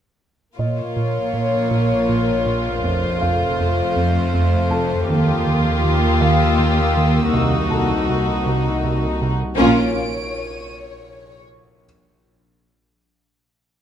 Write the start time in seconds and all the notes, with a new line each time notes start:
0.57 A#1 A#2 A#3 F4 A#4 C#5 D#5 F5
0.97 A#2
1.34 A#2
1.71 A#2
2.09 A#2
2.46 A#2
2.83 F1 F2 A3 A4 C5
3.21 F2 F5
3.60 F2
3.96 F2
4.34 F2
4.70 F2 A4 A5
5.07 D#2 D#3 A#3 F4 G4 F5 D#6
5.47 D#3
5.83 D#3 E6
6.21 D#3 F5
6.59 D#3
6.97 D#3
7.32 C2 C3 D#4 F#4
7.70 C3 A4 A5
8.09 C3
8.47 C3
8.84 C3
9.22 C3
9.56 A#1 A#2 A#3 C#4 F4 A#4 C#5 D7
10.40 D#7